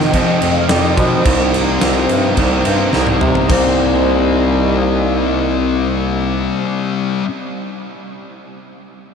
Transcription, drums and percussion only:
0.00 snare soft
0.14 kick medium
0.14 crash medium
0.42 crash medium
0.69 snare loud
0.69 crash medium
0.97 kick loud
0.97 crash medium
1.25 kick loud
1.25 crash loud
1.54 crash medium
1.81 snare loud
1.81 crash medium
2.09 crash medium
2.37 kick medium
2.37 crash medium
2.65 crash medium
2.93 snare medium
3.07 high tom medium
3.21 mid tom loud
3.35 floor tom loud
3.49 kick loud
3.49 crash loud

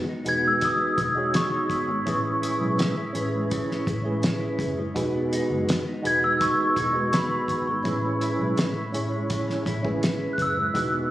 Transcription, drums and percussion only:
0.26 closed hi-hat medium
0.61 kick medium
0.61 closed hi-hat medium
0.98 kick medium
0.98 closed hi-hat medium
1.34 snare loud
1.34 closed hi-hat medium
1.70 kick medium
1.70 closed hi-hat medium
2.07 kick medium
2.07 closed hi-hat medium
2.43 closed hi-hat medium
2.79 snare medium
2.79 closed hi-hat medium
3.15 closed hi-hat medium
3.51 kick loud
3.51 closed hi-hat medium
3.71 snare soft
3.87 kick medium
3.87 closed hi-hat medium
4.23 snare loud
4.23 closed hi-hat medium
4.59 kick medium
4.59 closed hi-hat medium
4.96 kick loud
4.96 closed hi-hat medium
5.33 closed hi-hat medium
5.69 snare medium
5.69 closed hi-hat medium
6.05 closed hi-hat medium
6.41 kick medium
6.41 closed hi-hat medium
6.76 kick medium
6.76 closed hi-hat medium
7.13 snare loud
7.13 closed hi-hat medium
7.48 kick medium
7.48 closed hi-hat medium
7.85 kick medium
7.85 closed hi-hat medium
8.21 closed hi-hat medium
8.57 snare loud
8.57 closed hi-hat medium
8.94 closed hi-hat medium
9.30 kick medium
9.30 closed hi-hat medium
9.50 snare soft
9.66 kick medium
9.66 closed hi-hat medium
9.85 kick medium
10.03 snare loud
10.03 closed hi-hat medium
10.38 kick medium
10.38 closed hi-hat medium
10.75 kick medium
10.75 closed hi-hat medium

